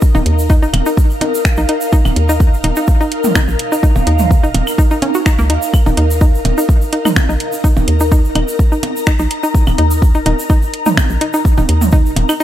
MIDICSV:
0, 0, Header, 1, 6, 480
1, 0, Start_track
1, 0, Tempo, 476190
1, 21, Time_signature, 4, 2, 24, 8
1, 12534, End_track
2, 0, Start_track
2, 0, Title_t, "Ambient pad"
2, 0, Program_c, 0, 92
2, 0, Note_on_c, 0, 63, 78
2, 0, Note_on_c, 0, 70, 92
2, 0, Note_on_c, 0, 77, 74
2, 6856, Note_on_c, 0, 82, 74
2, 6878, Note_off_c, 0, 77, 0
2, 12534, Note_off_c, 0, 63, 0
2, 12534, Note_off_c, 0, 70, 0
2, 12534, Note_off_c, 0, 82, 0
2, 12534, End_track
3, 0, Start_track
3, 0, Title_t, "Synth arpeggio sound"
3, 0, Program_c, 1, 84
3, 150, Note_on_c, 1, 63, 78
3, 194, Note_off_c, 1, 63, 0
3, 502, Note_on_c, 1, 63, 88
3, 552, Note_off_c, 1, 63, 0
3, 629, Note_on_c, 1, 63, 76
3, 674, Note_off_c, 1, 63, 0
3, 869, Note_on_c, 1, 63, 77
3, 936, Note_off_c, 1, 63, 0
3, 1223, Note_on_c, 1, 63, 76
3, 1273, Note_off_c, 1, 63, 0
3, 1590, Note_on_c, 1, 63, 80
3, 1634, Note_off_c, 1, 63, 0
3, 1702, Note_on_c, 1, 63, 79
3, 1753, Note_off_c, 1, 63, 0
3, 1942, Note_on_c, 1, 63, 85
3, 2018, Note_off_c, 1, 63, 0
3, 2310, Note_on_c, 1, 63, 78
3, 2354, Note_off_c, 1, 63, 0
3, 2662, Note_on_c, 1, 63, 78
3, 2712, Note_off_c, 1, 63, 0
3, 2790, Note_on_c, 1, 63, 78
3, 2834, Note_off_c, 1, 63, 0
3, 3030, Note_on_c, 1, 63, 80
3, 3096, Note_off_c, 1, 63, 0
3, 3382, Note_on_c, 1, 63, 88
3, 3432, Note_off_c, 1, 63, 0
3, 3750, Note_on_c, 1, 63, 80
3, 3794, Note_off_c, 1, 63, 0
3, 3862, Note_on_c, 1, 63, 86
3, 3913, Note_off_c, 1, 63, 0
3, 4102, Note_on_c, 1, 63, 78
3, 4178, Note_off_c, 1, 63, 0
3, 4470, Note_on_c, 1, 63, 78
3, 4514, Note_off_c, 1, 63, 0
3, 4822, Note_on_c, 1, 63, 87
3, 4872, Note_off_c, 1, 63, 0
3, 4950, Note_on_c, 1, 63, 83
3, 4994, Note_off_c, 1, 63, 0
3, 5062, Note_on_c, 1, 61, 77
3, 5138, Note_off_c, 1, 61, 0
3, 5190, Note_on_c, 1, 66, 80
3, 5234, Note_off_c, 1, 66, 0
3, 5302, Note_on_c, 1, 63, 103
3, 5332, Note_off_c, 1, 63, 0
3, 5429, Note_on_c, 1, 58, 102
3, 5456, Note_off_c, 1, 58, 0
3, 5541, Note_on_c, 1, 63, 78
3, 5592, Note_off_c, 1, 63, 0
3, 5909, Note_on_c, 1, 63, 77
3, 5954, Note_off_c, 1, 63, 0
3, 6022, Note_on_c, 1, 63, 76
3, 6072, Note_off_c, 1, 63, 0
3, 6261, Note_on_c, 1, 63, 87
3, 6337, Note_off_c, 1, 63, 0
3, 6630, Note_on_c, 1, 63, 79
3, 6696, Note_off_c, 1, 63, 0
3, 6982, Note_on_c, 1, 63, 76
3, 7032, Note_off_c, 1, 63, 0
3, 7110, Note_on_c, 1, 63, 78
3, 7154, Note_off_c, 1, 63, 0
3, 7349, Note_on_c, 1, 63, 78
3, 7416, Note_off_c, 1, 63, 0
3, 7702, Note_on_c, 1, 63, 86
3, 7777, Note_off_c, 1, 63, 0
3, 8070, Note_on_c, 1, 63, 77
3, 8114, Note_off_c, 1, 63, 0
3, 8181, Note_on_c, 1, 63, 88
3, 8232, Note_off_c, 1, 63, 0
3, 8421, Note_on_c, 1, 63, 77
3, 8497, Note_off_c, 1, 63, 0
3, 8789, Note_on_c, 1, 63, 81
3, 8856, Note_off_c, 1, 63, 0
3, 9141, Note_on_c, 1, 63, 87
3, 9192, Note_off_c, 1, 63, 0
3, 9268, Note_on_c, 1, 63, 80
3, 9313, Note_off_c, 1, 63, 0
3, 9509, Note_on_c, 1, 63, 81
3, 9576, Note_off_c, 1, 63, 0
3, 9862, Note_on_c, 1, 63, 77
3, 9938, Note_off_c, 1, 63, 0
3, 10230, Note_on_c, 1, 63, 76
3, 10274, Note_off_c, 1, 63, 0
3, 10342, Note_on_c, 1, 63, 81
3, 10392, Note_off_c, 1, 63, 0
3, 10581, Note_on_c, 1, 63, 87
3, 10657, Note_off_c, 1, 63, 0
3, 10949, Note_on_c, 1, 63, 79
3, 11016, Note_off_c, 1, 63, 0
3, 11301, Note_on_c, 1, 63, 81
3, 11352, Note_off_c, 1, 63, 0
3, 11429, Note_on_c, 1, 63, 81
3, 11474, Note_off_c, 1, 63, 0
3, 11669, Note_on_c, 1, 63, 78
3, 11736, Note_off_c, 1, 63, 0
3, 12022, Note_on_c, 1, 63, 87
3, 12098, Note_off_c, 1, 63, 0
3, 12390, Note_on_c, 1, 63, 78
3, 12434, Note_off_c, 1, 63, 0
3, 12502, Note_on_c, 1, 63, 88
3, 12534, Note_off_c, 1, 63, 0
3, 12534, End_track
4, 0, Start_track
4, 0, Title_t, "FM bass"
4, 0, Program_c, 2, 39
4, 149, Note_on_c, 2, 27, 102
4, 224, Note_off_c, 2, 27, 0
4, 260, Note_on_c, 2, 39, 91
4, 628, Note_on_c, 2, 27, 94
4, 643, Note_off_c, 2, 39, 0
4, 703, Note_off_c, 2, 27, 0
4, 740, Note_on_c, 2, 27, 94
4, 825, Note_off_c, 2, 27, 0
4, 1589, Note_on_c, 2, 34, 84
4, 1664, Note_off_c, 2, 34, 0
4, 2068, Note_on_c, 2, 27, 100
4, 2143, Note_off_c, 2, 27, 0
4, 2180, Note_on_c, 2, 39, 87
4, 2548, Note_on_c, 2, 27, 91
4, 2563, Note_off_c, 2, 39, 0
4, 2623, Note_off_c, 2, 27, 0
4, 2660, Note_on_c, 2, 27, 94
4, 2746, Note_off_c, 2, 27, 0
4, 3508, Note_on_c, 2, 34, 85
4, 3584, Note_off_c, 2, 34, 0
4, 3988, Note_on_c, 2, 27, 102
4, 4063, Note_off_c, 2, 27, 0
4, 4101, Note_on_c, 2, 39, 89
4, 4469, Note_on_c, 2, 27, 91
4, 4484, Note_off_c, 2, 39, 0
4, 4544, Note_off_c, 2, 27, 0
4, 4582, Note_on_c, 2, 27, 95
4, 4666, Note_off_c, 2, 27, 0
4, 5430, Note_on_c, 2, 37, 84
4, 5543, Note_on_c, 2, 39, 88
4, 5558, Note_off_c, 2, 37, 0
4, 5627, Note_off_c, 2, 39, 0
4, 5910, Note_on_c, 2, 27, 100
4, 5984, Note_off_c, 2, 27, 0
4, 6021, Note_on_c, 2, 39, 90
4, 6389, Note_on_c, 2, 27, 90
4, 6404, Note_off_c, 2, 39, 0
4, 6464, Note_off_c, 2, 27, 0
4, 6501, Note_on_c, 2, 27, 92
4, 6586, Note_off_c, 2, 27, 0
4, 7349, Note_on_c, 2, 34, 87
4, 7424, Note_off_c, 2, 34, 0
4, 7829, Note_on_c, 2, 27, 104
4, 7904, Note_off_c, 2, 27, 0
4, 7941, Note_on_c, 2, 39, 87
4, 8309, Note_on_c, 2, 27, 91
4, 8324, Note_off_c, 2, 39, 0
4, 8384, Note_off_c, 2, 27, 0
4, 8421, Note_on_c, 2, 27, 93
4, 8506, Note_off_c, 2, 27, 0
4, 9269, Note_on_c, 2, 34, 87
4, 9344, Note_off_c, 2, 34, 0
4, 9749, Note_on_c, 2, 27, 101
4, 9824, Note_off_c, 2, 27, 0
4, 9861, Note_on_c, 2, 39, 93
4, 10228, Note_on_c, 2, 27, 92
4, 10243, Note_off_c, 2, 39, 0
4, 10303, Note_off_c, 2, 27, 0
4, 10342, Note_on_c, 2, 27, 97
4, 10427, Note_off_c, 2, 27, 0
4, 11189, Note_on_c, 2, 34, 86
4, 11264, Note_off_c, 2, 34, 0
4, 11669, Note_on_c, 2, 27, 104
4, 11744, Note_off_c, 2, 27, 0
4, 11781, Note_on_c, 2, 39, 93
4, 12149, Note_on_c, 2, 27, 91
4, 12164, Note_off_c, 2, 39, 0
4, 12224, Note_off_c, 2, 27, 0
4, 12261, Note_on_c, 2, 27, 94
4, 12346, Note_off_c, 2, 27, 0
4, 12534, End_track
5, 0, Start_track
5, 0, Title_t, "Percussion blips"
5, 149, Note_on_c, 9, 63, 55
5, 250, Note_off_c, 9, 63, 0
5, 741, Note_on_c, 9, 63, 56
5, 842, Note_off_c, 9, 63, 0
5, 1221, Note_on_c, 9, 63, 56
5, 1322, Note_off_c, 9, 63, 0
5, 2069, Note_on_c, 9, 63, 57
5, 2170, Note_off_c, 9, 63, 0
5, 2661, Note_on_c, 9, 63, 55
5, 2762, Note_off_c, 9, 63, 0
5, 3382, Note_on_c, 9, 63, 85
5, 3482, Note_off_c, 9, 63, 0
5, 3989, Note_on_c, 9, 63, 54
5, 4090, Note_off_c, 9, 63, 0
5, 4581, Note_on_c, 9, 63, 54
5, 4682, Note_off_c, 9, 63, 0
5, 5062, Note_on_c, 9, 63, 55
5, 5162, Note_off_c, 9, 63, 0
5, 5910, Note_on_c, 9, 63, 52
5, 6011, Note_off_c, 9, 63, 0
5, 6502, Note_on_c, 9, 63, 54
5, 6603, Note_off_c, 9, 63, 0
5, 7221, Note_on_c, 9, 63, 80
5, 7322, Note_off_c, 9, 63, 0
5, 7829, Note_on_c, 9, 63, 52
5, 7930, Note_off_c, 9, 63, 0
5, 8422, Note_on_c, 9, 63, 51
5, 8522, Note_off_c, 9, 63, 0
5, 8901, Note_on_c, 9, 63, 52
5, 9002, Note_off_c, 9, 63, 0
5, 9749, Note_on_c, 9, 63, 50
5, 9850, Note_off_c, 9, 63, 0
5, 10342, Note_on_c, 9, 63, 50
5, 10443, Note_off_c, 9, 63, 0
5, 11062, Note_on_c, 9, 63, 78
5, 11163, Note_off_c, 9, 63, 0
5, 11670, Note_on_c, 9, 63, 52
5, 11770, Note_off_c, 9, 63, 0
5, 12261, Note_on_c, 9, 63, 52
5, 12362, Note_off_c, 9, 63, 0
5, 12534, End_track
6, 0, Start_track
6, 0, Title_t, "Drums"
6, 15, Note_on_c, 9, 82, 71
6, 21, Note_on_c, 9, 36, 126
6, 116, Note_off_c, 9, 82, 0
6, 122, Note_off_c, 9, 36, 0
6, 151, Note_on_c, 9, 82, 39
6, 251, Note_off_c, 9, 82, 0
6, 262, Note_on_c, 9, 42, 98
6, 363, Note_off_c, 9, 42, 0
6, 391, Note_on_c, 9, 82, 77
6, 492, Note_off_c, 9, 82, 0
6, 500, Note_on_c, 9, 82, 66
6, 501, Note_on_c, 9, 36, 124
6, 600, Note_off_c, 9, 82, 0
6, 602, Note_off_c, 9, 36, 0
6, 633, Note_on_c, 9, 82, 40
6, 734, Note_off_c, 9, 82, 0
6, 741, Note_on_c, 9, 75, 67
6, 742, Note_on_c, 9, 42, 96
6, 842, Note_off_c, 9, 75, 0
6, 843, Note_off_c, 9, 42, 0
6, 867, Note_on_c, 9, 82, 81
6, 968, Note_off_c, 9, 82, 0
6, 981, Note_on_c, 9, 36, 124
6, 985, Note_on_c, 9, 82, 69
6, 1082, Note_off_c, 9, 36, 0
6, 1086, Note_off_c, 9, 82, 0
6, 1112, Note_on_c, 9, 82, 39
6, 1212, Note_off_c, 9, 82, 0
6, 1222, Note_on_c, 9, 42, 97
6, 1323, Note_off_c, 9, 42, 0
6, 1357, Note_on_c, 9, 82, 80
6, 1457, Note_off_c, 9, 82, 0
6, 1461, Note_on_c, 9, 36, 127
6, 1462, Note_on_c, 9, 26, 114
6, 1463, Note_on_c, 9, 82, 65
6, 1562, Note_off_c, 9, 36, 0
6, 1563, Note_off_c, 9, 26, 0
6, 1564, Note_off_c, 9, 82, 0
6, 1580, Note_on_c, 9, 82, 41
6, 1681, Note_off_c, 9, 82, 0
6, 1702, Note_on_c, 9, 42, 97
6, 1803, Note_off_c, 9, 42, 0
6, 1824, Note_on_c, 9, 82, 86
6, 1925, Note_off_c, 9, 82, 0
6, 1939, Note_on_c, 9, 82, 66
6, 1941, Note_on_c, 9, 36, 127
6, 2040, Note_off_c, 9, 82, 0
6, 2042, Note_off_c, 9, 36, 0
6, 2069, Note_on_c, 9, 75, 66
6, 2071, Note_on_c, 9, 82, 43
6, 2170, Note_off_c, 9, 75, 0
6, 2171, Note_off_c, 9, 82, 0
6, 2181, Note_on_c, 9, 42, 103
6, 2282, Note_off_c, 9, 42, 0
6, 2311, Note_on_c, 9, 82, 79
6, 2412, Note_off_c, 9, 82, 0
6, 2421, Note_on_c, 9, 36, 127
6, 2422, Note_on_c, 9, 82, 68
6, 2522, Note_off_c, 9, 36, 0
6, 2523, Note_off_c, 9, 82, 0
6, 2558, Note_on_c, 9, 82, 37
6, 2658, Note_off_c, 9, 82, 0
6, 2662, Note_on_c, 9, 42, 101
6, 2762, Note_off_c, 9, 42, 0
6, 2782, Note_on_c, 9, 82, 88
6, 2883, Note_off_c, 9, 82, 0
6, 2895, Note_on_c, 9, 82, 70
6, 2901, Note_on_c, 9, 36, 127
6, 2995, Note_off_c, 9, 82, 0
6, 3002, Note_off_c, 9, 36, 0
6, 3032, Note_on_c, 9, 82, 44
6, 3132, Note_off_c, 9, 82, 0
6, 3142, Note_on_c, 9, 42, 97
6, 3242, Note_off_c, 9, 42, 0
6, 3265, Note_on_c, 9, 82, 88
6, 3269, Note_on_c, 9, 45, 85
6, 3366, Note_off_c, 9, 82, 0
6, 3370, Note_off_c, 9, 45, 0
6, 3380, Note_on_c, 9, 82, 74
6, 3381, Note_on_c, 9, 26, 112
6, 3381, Note_on_c, 9, 36, 127
6, 3382, Note_on_c, 9, 75, 65
6, 3481, Note_off_c, 9, 82, 0
6, 3482, Note_off_c, 9, 26, 0
6, 3482, Note_off_c, 9, 36, 0
6, 3482, Note_off_c, 9, 75, 0
6, 3507, Note_on_c, 9, 82, 43
6, 3607, Note_off_c, 9, 82, 0
6, 3622, Note_on_c, 9, 42, 101
6, 3723, Note_off_c, 9, 42, 0
6, 3754, Note_on_c, 9, 82, 80
6, 3854, Note_off_c, 9, 82, 0
6, 3861, Note_on_c, 9, 36, 121
6, 3863, Note_on_c, 9, 82, 65
6, 3962, Note_off_c, 9, 36, 0
6, 3964, Note_off_c, 9, 82, 0
6, 3986, Note_on_c, 9, 82, 40
6, 4087, Note_off_c, 9, 82, 0
6, 4101, Note_on_c, 9, 42, 101
6, 4202, Note_off_c, 9, 42, 0
6, 4221, Note_on_c, 9, 82, 84
6, 4229, Note_on_c, 9, 45, 84
6, 4322, Note_off_c, 9, 82, 0
6, 4330, Note_off_c, 9, 45, 0
6, 4342, Note_on_c, 9, 36, 127
6, 4347, Note_on_c, 9, 82, 69
6, 4442, Note_off_c, 9, 36, 0
6, 4447, Note_off_c, 9, 82, 0
6, 4470, Note_on_c, 9, 82, 36
6, 4571, Note_off_c, 9, 82, 0
6, 4581, Note_on_c, 9, 42, 98
6, 4682, Note_off_c, 9, 42, 0
6, 4709, Note_on_c, 9, 75, 65
6, 4711, Note_on_c, 9, 82, 83
6, 4810, Note_off_c, 9, 75, 0
6, 4811, Note_off_c, 9, 82, 0
6, 4822, Note_on_c, 9, 36, 127
6, 4824, Note_on_c, 9, 82, 64
6, 4922, Note_off_c, 9, 36, 0
6, 4925, Note_off_c, 9, 82, 0
6, 4949, Note_on_c, 9, 82, 40
6, 5050, Note_off_c, 9, 82, 0
6, 5061, Note_on_c, 9, 42, 96
6, 5162, Note_off_c, 9, 42, 0
6, 5186, Note_on_c, 9, 82, 81
6, 5287, Note_off_c, 9, 82, 0
6, 5301, Note_on_c, 9, 26, 104
6, 5302, Note_on_c, 9, 36, 126
6, 5307, Note_on_c, 9, 82, 66
6, 5402, Note_off_c, 9, 26, 0
6, 5402, Note_off_c, 9, 36, 0
6, 5408, Note_off_c, 9, 82, 0
6, 5428, Note_on_c, 9, 82, 45
6, 5529, Note_off_c, 9, 82, 0
6, 5542, Note_on_c, 9, 42, 101
6, 5642, Note_off_c, 9, 42, 0
6, 5667, Note_on_c, 9, 82, 87
6, 5768, Note_off_c, 9, 82, 0
6, 5782, Note_on_c, 9, 36, 119
6, 5782, Note_on_c, 9, 75, 63
6, 5784, Note_on_c, 9, 82, 71
6, 5882, Note_off_c, 9, 36, 0
6, 5883, Note_off_c, 9, 75, 0
6, 5885, Note_off_c, 9, 82, 0
6, 5910, Note_on_c, 9, 82, 40
6, 6011, Note_off_c, 9, 82, 0
6, 6021, Note_on_c, 9, 42, 97
6, 6122, Note_off_c, 9, 42, 0
6, 6155, Note_on_c, 9, 82, 78
6, 6255, Note_off_c, 9, 82, 0
6, 6258, Note_on_c, 9, 82, 69
6, 6262, Note_on_c, 9, 36, 122
6, 6359, Note_off_c, 9, 82, 0
6, 6363, Note_off_c, 9, 36, 0
6, 6398, Note_on_c, 9, 82, 37
6, 6499, Note_off_c, 9, 82, 0
6, 6502, Note_on_c, 9, 42, 94
6, 6602, Note_off_c, 9, 42, 0
6, 6632, Note_on_c, 9, 82, 86
6, 6733, Note_off_c, 9, 82, 0
6, 6742, Note_on_c, 9, 36, 123
6, 6748, Note_on_c, 9, 82, 64
6, 6842, Note_off_c, 9, 36, 0
6, 6849, Note_off_c, 9, 82, 0
6, 6868, Note_on_c, 9, 82, 40
6, 6969, Note_off_c, 9, 82, 0
6, 6982, Note_on_c, 9, 42, 93
6, 7082, Note_off_c, 9, 42, 0
6, 7110, Note_on_c, 9, 45, 80
6, 7110, Note_on_c, 9, 75, 63
6, 7115, Note_on_c, 9, 82, 80
6, 7210, Note_off_c, 9, 45, 0
6, 7210, Note_off_c, 9, 75, 0
6, 7216, Note_off_c, 9, 82, 0
6, 7221, Note_on_c, 9, 26, 106
6, 7221, Note_on_c, 9, 36, 121
6, 7221, Note_on_c, 9, 82, 69
6, 7322, Note_off_c, 9, 26, 0
6, 7322, Note_off_c, 9, 36, 0
6, 7322, Note_off_c, 9, 82, 0
6, 7355, Note_on_c, 9, 82, 43
6, 7456, Note_off_c, 9, 82, 0
6, 7461, Note_on_c, 9, 42, 95
6, 7562, Note_off_c, 9, 42, 0
6, 7585, Note_on_c, 9, 82, 78
6, 7686, Note_off_c, 9, 82, 0
6, 7701, Note_on_c, 9, 36, 116
6, 7704, Note_on_c, 9, 82, 69
6, 7802, Note_off_c, 9, 36, 0
6, 7805, Note_off_c, 9, 82, 0
6, 7825, Note_on_c, 9, 82, 36
6, 7926, Note_off_c, 9, 82, 0
6, 7941, Note_on_c, 9, 42, 94
6, 8042, Note_off_c, 9, 42, 0
6, 8063, Note_on_c, 9, 82, 80
6, 8164, Note_off_c, 9, 82, 0
6, 8181, Note_on_c, 9, 36, 118
6, 8182, Note_on_c, 9, 82, 71
6, 8282, Note_off_c, 9, 36, 0
6, 8283, Note_off_c, 9, 82, 0
6, 8313, Note_on_c, 9, 82, 38
6, 8414, Note_off_c, 9, 82, 0
6, 8421, Note_on_c, 9, 42, 93
6, 8422, Note_on_c, 9, 75, 68
6, 8522, Note_off_c, 9, 42, 0
6, 8522, Note_off_c, 9, 75, 0
6, 8549, Note_on_c, 9, 82, 82
6, 8650, Note_off_c, 9, 82, 0
6, 8661, Note_on_c, 9, 36, 119
6, 8662, Note_on_c, 9, 82, 60
6, 8762, Note_off_c, 9, 36, 0
6, 8762, Note_off_c, 9, 82, 0
6, 8789, Note_on_c, 9, 82, 42
6, 8890, Note_off_c, 9, 82, 0
6, 8901, Note_on_c, 9, 42, 93
6, 9002, Note_off_c, 9, 42, 0
6, 9037, Note_on_c, 9, 82, 75
6, 9138, Note_off_c, 9, 82, 0
6, 9138, Note_on_c, 9, 82, 67
6, 9141, Note_on_c, 9, 26, 105
6, 9141, Note_on_c, 9, 36, 123
6, 9239, Note_off_c, 9, 82, 0
6, 9242, Note_off_c, 9, 26, 0
6, 9242, Note_off_c, 9, 36, 0
6, 9264, Note_on_c, 9, 82, 42
6, 9364, Note_off_c, 9, 82, 0
6, 9382, Note_on_c, 9, 42, 93
6, 9483, Note_off_c, 9, 42, 0
6, 9510, Note_on_c, 9, 82, 74
6, 9611, Note_off_c, 9, 82, 0
6, 9621, Note_on_c, 9, 36, 113
6, 9625, Note_on_c, 9, 82, 58
6, 9722, Note_off_c, 9, 36, 0
6, 9726, Note_off_c, 9, 82, 0
6, 9745, Note_on_c, 9, 82, 37
6, 9749, Note_on_c, 9, 75, 67
6, 9846, Note_off_c, 9, 82, 0
6, 9850, Note_off_c, 9, 75, 0
6, 9862, Note_on_c, 9, 42, 93
6, 9963, Note_off_c, 9, 42, 0
6, 9986, Note_on_c, 9, 82, 81
6, 10087, Note_off_c, 9, 82, 0
6, 10101, Note_on_c, 9, 36, 119
6, 10106, Note_on_c, 9, 82, 67
6, 10202, Note_off_c, 9, 36, 0
6, 10206, Note_off_c, 9, 82, 0
6, 10224, Note_on_c, 9, 82, 34
6, 10325, Note_off_c, 9, 82, 0
6, 10342, Note_on_c, 9, 42, 88
6, 10442, Note_off_c, 9, 42, 0
6, 10475, Note_on_c, 9, 82, 70
6, 10576, Note_off_c, 9, 82, 0
6, 10578, Note_on_c, 9, 82, 60
6, 10582, Note_on_c, 9, 36, 117
6, 10679, Note_off_c, 9, 82, 0
6, 10682, Note_off_c, 9, 36, 0
6, 10705, Note_on_c, 9, 82, 38
6, 10806, Note_off_c, 9, 82, 0
6, 10822, Note_on_c, 9, 42, 91
6, 10923, Note_off_c, 9, 42, 0
6, 10944, Note_on_c, 9, 82, 77
6, 10950, Note_on_c, 9, 45, 83
6, 11045, Note_off_c, 9, 82, 0
6, 11050, Note_off_c, 9, 45, 0
6, 11062, Note_on_c, 9, 26, 105
6, 11062, Note_on_c, 9, 36, 119
6, 11062, Note_on_c, 9, 75, 70
6, 11065, Note_on_c, 9, 82, 61
6, 11162, Note_off_c, 9, 36, 0
6, 11163, Note_off_c, 9, 26, 0
6, 11163, Note_off_c, 9, 75, 0
6, 11166, Note_off_c, 9, 82, 0
6, 11185, Note_on_c, 9, 82, 42
6, 11286, Note_off_c, 9, 82, 0
6, 11301, Note_on_c, 9, 42, 92
6, 11402, Note_off_c, 9, 42, 0
6, 11425, Note_on_c, 9, 82, 72
6, 11526, Note_off_c, 9, 82, 0
6, 11542, Note_on_c, 9, 36, 117
6, 11546, Note_on_c, 9, 82, 65
6, 11642, Note_off_c, 9, 36, 0
6, 11647, Note_off_c, 9, 82, 0
6, 11667, Note_on_c, 9, 82, 36
6, 11768, Note_off_c, 9, 82, 0
6, 11782, Note_on_c, 9, 42, 94
6, 11883, Note_off_c, 9, 42, 0
6, 11908, Note_on_c, 9, 45, 88
6, 11911, Note_on_c, 9, 82, 78
6, 12009, Note_off_c, 9, 45, 0
6, 12012, Note_off_c, 9, 82, 0
6, 12012, Note_on_c, 9, 82, 66
6, 12021, Note_on_c, 9, 36, 121
6, 12113, Note_off_c, 9, 82, 0
6, 12122, Note_off_c, 9, 36, 0
6, 12155, Note_on_c, 9, 82, 35
6, 12256, Note_off_c, 9, 82, 0
6, 12262, Note_on_c, 9, 42, 91
6, 12363, Note_off_c, 9, 42, 0
6, 12389, Note_on_c, 9, 75, 71
6, 12390, Note_on_c, 9, 82, 79
6, 12490, Note_off_c, 9, 75, 0
6, 12491, Note_off_c, 9, 82, 0
6, 12502, Note_on_c, 9, 82, 60
6, 12534, Note_off_c, 9, 82, 0
6, 12534, End_track
0, 0, End_of_file